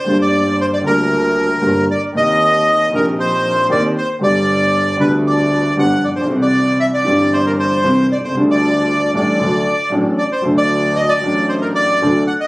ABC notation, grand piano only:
X:1
M:4/4
L:1/16
Q:1/4=116
K:Gm
V:1 name="Grand piano" clef=bass
[G,,,G,,D,G,B,G]6 [D,,D,G,B,G]6 [G,,,G,,D,G,B,G]2 z2 | [E,,E,B,CG]6 [B,,,B,,E,B,CG]6 [E,,E,B,CG]2 z2 | [G,,,G,,D,G,=B,G]6 [D,,D,G,B,G]6 [G,,,G,,D,G,B,G]2 z/2 A,,,/2 _B,,,/2 =B,,,/2 | [C,,C,=E,G,CG]6 [G,,,G,,E,G,CG]6 [C,,C,E,G,CG]2 z/2 =B,,,/2 C,,/2 ^C,,/2 |
[D,,D,G,A,DA]6 [A,,,A,,G,A,DA]2 [D,,D,^F,A,DA]2 z2 [A,,,A,,F,A,DA]2 z2 | [D,,D,^F,A,DA]6 [A,,,A,,F,A,DA]6 [D,,D,F,A,DA]2 z2 |]